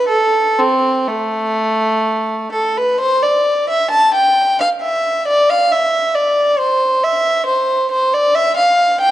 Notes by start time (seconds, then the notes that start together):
0.08 A4
0.59 C4
1.08 A3
2.52 A4
2.77 B4
3.00 C5
3.23 D5
3.70 E5
3.91 A5
4.14 G5
4.60 F5
4.82 E5
5.28 D5
5.50 F5
5.72 E5
6.15 D5
6.59 C5
7.04 E5
7.47 C5
7.91 C5
8.14 D5
8.35 E5
8.56 F5
9.01 G5